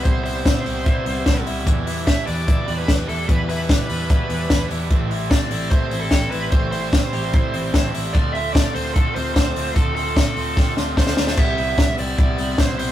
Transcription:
<<
  \new Staff \with { instrumentName = "Lead electric guitar" } { \time 4/4 \key a \minor \tempo 4 = 148 c''8 c''2. r8 | r4 e''8 d''4~ d''16 b'8. a'8 | b'8 b'2. r8 | r4 d''4 c''8. a'8. b'8 |
c''8 c''2. r8 | d''8 e''8 d''8 c''8 a'8 c''8 c''4 | a'8 a'2 r8 c''4 | e''4. d''4. c''8 c''8 | }
  \new Staff \with { instrumentName = "Clean electric guitar" } { \time 4/4 \key a \minor <c c' e'>8 e'8 c'4 e'8 c'8 a'16 b'16 e'8 | e8 e'8 d'8 b'8 e'8 d'8 a'16 b'16 e'8 | e8 e'8 d'8 b'8 e'8 d'8 b'8 e'8 | a,8 e'8 c'8 a'8 e'8 c'8 g'16 a'16 e'8 |
a,8 e'8 c'8 g'16 a'16 e'8 c'8 a'8 e'8 | d8 d'8 c'8 a'8 d'8 c'8 a'8 d'8 | d8 c'16 d'16 c'8 a'8 c'16 d'16 c'8 a'8 d'8 | c8 e'4 c'8 e'8 c'8 e'8 c'8 | }
  \new Staff \with { instrumentName = "Overdriven electric guitar" } { \time 4/4 \key a \minor <c e g b e'>8 <g b e'>8 <e g b e'>8 <g b e'>8 <c e g b e'>8 <g b e'>8 <e g b e'>8 <g b e'>8 | <e, b, e g d' e'>8 <e g d' e'>8 <e g d' e'>8 <e g d' e'>8 <e, b, e g d' e'>8 <e g d' e'>8 <e g d' e'>8 <e g d' e'>8 | <e, b, e g d' e'>8 <e g d' e'>8 <e g d' e'>8 <e g d' e'>8 <e, b, e g d' e'>8 <e g d' e'>8 <e g d' e'>8 <e g d' e'>8 | <a, e g c' e'>8 <g c' e'>8 <e g c' e'>8 <g c' e'>8 <a, e g c' e'>8 <g c' e'>8 <e g c' e'>8 <g c' e'>8 |
<a, e g c' e'>8 <g c' e'>8 <e g c' e'>8 <g c' e'>8 <a, e g c' e'>8 <g c' e'>8 <e g c' e'>8 <g c' e'>8 | <d a c' f'>8 <a c' f'>8 <d a c' f'>8 <a c' f'>8 <d a c' f'>8 <a c' f'>8 <d a c' f'>8 <a c' f'>8 | <d a c' f'>8 <a c' f'>8 <d a c' f'>8 <a c' f'>8 <d a c' f'>8 <a c' f'>8 <d a c' f'>8 <a c' f'>8 | <c e g b e'>8 <g b e'>8 <e g b e'>8 <g b e'>8 <c e g b e'>8 <g b e'>8 <e g b e'>8 <g b e'>8 | }
  \new Staff \with { instrumentName = "Fingered electric bass" } { \clef bass \time 4/4 \key a \minor c,4~ c,16 r16 c,8. r16 c,8 c,8 c,8 | e,4~ e,16 r16 e,8. r16 e,8 e,8 e,8 | e,4~ e,16 r16 e,8. r16 e,8 e,8 e,8 | a,,4~ a,,16 r16 a,,8. r16 a,,8 a,,8 a,,8 |
a,,4~ a,,16 r16 a,,8. r16 a,,8 a,,8 a,,8 | d,4~ d,16 r16 d,8. r16 d,8 d,8 d,8 | d,4~ d,16 r16 d,8. r16 d,8 d,8 d,8 | c,8 c,8 c,8 c,8 c,8 c,8 r8 b,,8 | }
  \new DrumStaff \with { instrumentName = "Drums" } \drummode { \time 4/4 <hh bd>8 hho8 <hh bd sn>8 hho8 <hh bd>8 hho8 <hh bd sn>8 hho8 | <hh bd>8 hho8 <hh bd sn>8 hho8 <hh bd>8 hho8 <hh bd sn>8 hho8 | <hh bd>8 hho8 <hh bd sn>8 hho8 <hh bd>8 hho8 <hh bd sn>8 hho8 | <hh bd>8 hho8 <hh bd sn>8 hho8 <hh bd>8 hho8 <hh bd sn>8 hho8 |
<hh bd>8 hho8 <hh bd sn>8 hho8 <hh bd>8 hho8 <hh bd sn>8 hho8 | <hh bd>8 hho8 <hh bd sn>8 hho8 <hh bd>8 hho8 <hh bd sn>8 hho8 | <hh bd>8 hho8 <hh bd sn>8 hho8 <bd sn>8 sn8 <bd sn>16 sn16 sn16 sn16 | <cymc bd>8 hho8 <hh bd sn>8 hho8 <hh bd>8 hho8 <hh bd sn>8 hho8 | }
>>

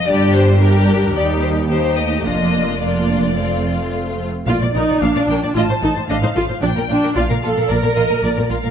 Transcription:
<<
  \new Staff \with { instrumentName = "Violin section" } { \time 4/4 \key bes \major \tempo 4 = 111 d''8 c''8 bes'4 d''8 c''8 c''8 ees''8 | ees''4 d''2 r4 | d''4 f''8 g''8 a''4 f''4 | g''4 f''4 d''8 ees''8 d''8 f''8 | }
  \new Staff \with { instrumentName = "Violin section" } { \time 4/4 \key bes \major g'4 g'4 g'4 g'4 | f'4 f'4 f'4. r8 | f''16 d''16 bes'16 d''16 f''16 d''16 bes'16 d''16 ees''16 c''16 a'16 c''16 ees''16 c''16 a'16 c''16 | d''16 bes'16 f'16 bes'16 d''16 bes'16 f'16 bes'16 d''16 bes'16 f'16 bes'16 d''16 bes'16 f'16 bes'16 | }
  \new Staff \with { instrumentName = "Viola section" } { \time 4/4 \key bes \major << { d'4 d'4 ees'4 ees'4 | d'4 d'4 c'4. r8 | f'8 ees'8 d'4 f'8 ees'8 d'16 ees'16 f'8 | d'8 d'8 f'8 a'8 bes'4. r8 | } \\ { g4 g4 g4 g8 a8 | bes4 bes4 a4. r8 | r1 | r1 | } >> }
  \new Staff \with { instrumentName = "Cello section" } { \clef bass \time 4/4 \key bes \major g,2 ees,2 | f,2.~ f,8. r16 | bes,16 bes,16 bes,16 bes,16 bes,16 bes,16 bes,16 bes,16 a,16 a,16 a,16 a,16 a,16 a,16 a,16 a,16 | bes,16 bes,16 bes,16 bes,16 bes,16 bes,16 bes,16 bes,16 bes,16 bes,16 bes,16 bes,16 bes,16 bes,16 bes,16 bes,16 | }
  \new Staff \with { instrumentName = "Double bass section" } { \clef bass \time 4/4 \key bes \major g,,2 ees,2 | f,,2.~ f,,8 r8 | bes,,16 r16 bes,,16 r16 bes,,16 r16 bes,,16 r16 a,,16 r16 a,,16 r16 a,,16 r16 a,,16 r16 | bes,,16 r16 bes,,16 r16 bes,,16 r16 bes,,16 r16 bes,,16 r16 bes,,16 r16 bes,,16 r16 bes,,16 r16 | }
>>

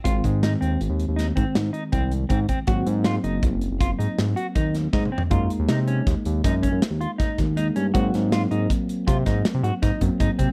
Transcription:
<<
  \new Staff \with { instrumentName = "Clean electric guitar" } { \time 7/4 \key aes \mixolydian \tempo 4 = 159 f'4 ees'8 c'4 r8 ees'8 c'4 ees'8 c'4 c'8 c'8 | ges'4 f'8 ees'4 r8 f'8 ees'4 ges'8 ees'4 ees'8 c'8 | f'4 ees'8 des'4 r8 ees'8 des'4 f'8 ees'4 ees'8 des'8 | ges'4 f'8 ees'4 r8 f'8 ees'4 ges'8 ees'4 ees'8 c'8 | }
  \new Staff \with { instrumentName = "Tine electric piano" } { \time 7/4 \key aes \mixolydian <ees aes c'>1.~ <ees aes c'>4 | <ges bes c'>1.~ <ges bes c'>4 | <aes bes ees'>1. <aes bes ees'>4 | <ges bes c'>1~ <ges bes c'>4. <ges bes c'>4. | }
  \new Staff \with { instrumentName = "Analog synth bass" } { \clef bass \time 7/4 \key aes \mixolydian aes,,8 aes,4 ees,8 aes,,16 ees,8 ees,8. aes,16 r16 aes,8 r8 c,4 aes,8 r8 | aes,,8 aes,4 ges,,8 c,16 ges,,8 ges,,8. aes,16 r16 aes,8 r8 ees,4 aes,8 r8 | ges,8 r16 ees,16 c4 ees,16 r16 ees,8 ges,8. ges,16 r16 ees,8 r8. ees,4 g,8 | aes,8 aes,4 aes,8 r4 c8 aes,8 r16 c16 aes,16 r16 aes,16 r16 ges,16 r16 aes,16 r16 c16 r16 | }
  \new DrumStaff \with { instrumentName = "Drums" } \drummode { \time 7/4 <hh bd>8 <hh bd>8 <hh sn>8 hh8 hh8 hh8 <hh sn>8 <hh bd>8 <hh sn>8 hh8 <hh bd>8 hh8 <hh bd>8 <hh bd>8 | <hh bd>8 hh8 <hh sn>8 hh8 <hh bd>8 hh8 <hh bd>8 hh8 <hh sn>8 hh8 <hh bd>8 <hh sn>8 \tuplet 3/2 { <bd sn>8 toml8 tomfh8 } | <hh bd>8 hh8 <hh sn>8 hh8 <hh bd sn>8 hh8 <hh bd sn>8 <hh bd>8 <hh sn>8 hh8 <hh bd sn>8 <hh bd sn>8 hh8 hh8 | <hh bd>8 <hh sn>8 <hh sn>8 hh8 <hh bd>8 hh8 <hh bd>8 <hh bd sn>8 <hh sn>8 hh8 <hh bd sn>8 <hh bd>8 <hh bd>8 <hh bd>8 | }
>>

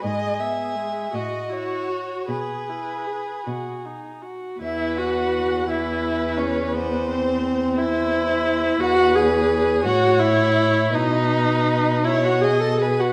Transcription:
<<
  \new Staff \with { instrumentName = "Violin" } { \time 6/8 \key e \major \tempo 4. = 55 dis''8 e''4 dis''8 cis''4 | b'4. r4. | e''8 fis''4 e''4 cis''8 | b'8 c''4 e''4. |
fis''8 gis''4 fis''8 e''4 | dis''4. e''16 fis''16 gis''16 a''16 gis''16 fis''16 | }
  \new Staff \with { instrumentName = "Violin" } { \time 6/8 \key e \major gis'4. fis'4. | gis'2~ gis'16 r8. | b'4. b'4. | c''4. c''4. |
b'4. cis''4. | b'4. cis''8 dis''8 b'8 | }
  \new Staff \with { instrumentName = "Viola" } { \time 6/8 \key e \major gis8 b8 gis8 fis'8 e'8 fis'8 | gis'8 e'8 gis'8 fis'8 dis'8 fis'8 | e'8 fis'4 e'4 cis'8 | b8 c'4 e'4. |
fis'8 gis'4 fis'8 e'4 | dis'4. e'16 fis'16 gis'16 a'16 gis'16 fis'16 | }
  \new Staff \with { instrumentName = "Cello" } { \clef bass \time 6/8 \key e \major gis,4. a,4. | b,4. b,4. | e,2.~ | e,2. |
e,4. a,4. | b,2~ b,8 r8 | }
>>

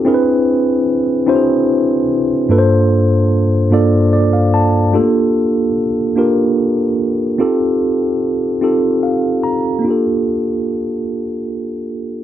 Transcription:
\new Staff \with { instrumentName = "Tine electric piano" } { \time 6/8 \key g \minor \tempo 4. = 49 << { r2. | r2 d''16 f''16 a''8 | r2. | r2 f''8 bes''8 |
r2. | } \\ { <c' d' e' gis' bes' b'>4 r8 <c' d' e' fis' gis' c''>4 r8 | <g, bes d' f' a' b' c''>4 r8 <g, bes d' f' a' d''>4 r8 | <a bes d' f' g' a'>4 r8 <bes d' f' g' bes'>4 r8 | <c' ees' f' g' a'>4 r8 <c' ees' f' g' a'>4 r8 |
<bes d' f' g' a'>2. | } >> }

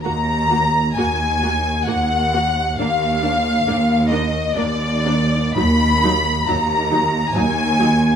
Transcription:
<<
  \new Staff \with { instrumentName = "Violin section" } { \time 3/4 \key ees \minor \tempo 4 = 66 bes''4 aes''4 ges''4 | f''4. ees''8 d''4 | ces'''4 bes''4 aes''4 | }
  \new Staff \with { instrumentName = "Violin section" } { \time 3/4 \key ees \minor bes''4 aes''4 ges''4 | f''4. ees''8 d''4 | ces'''4 bes''4 aes''4 | }
  \new Staff \with { instrumentName = "Viola section" } { \time 3/4 \key ees \minor <bes ges'>8 <bes ges'>8 <bes ges'>8 <bes ges'>8 <bes ges'>8 <bes ges'>8 | <bes d'>8 <bes d'>8 <bes d'>8 <bes d'>8 <bes d'>8 <bes d'>8 | <ges ees'>8 <ges ees'>8 <ges ees'>8 <ges ees'>8 <ges ees'>8 <ges ees'>8 | }
  \new Staff \with { instrumentName = "Cello section" } { \clef bass \time 3/4 \key ees \minor ees,4 ees,4 ees,4 | ees,4 ees,4 ees,4 | ees,4 ees,4 ees,4 | }
  \new Staff \with { instrumentName = "Double bass section" } { \clef bass \time 3/4 \key ees \minor ees,4 ees,4 ees,4 | ees,4 ees,4 ees,4 | ees,4 ees,4 ees,4 | }
>>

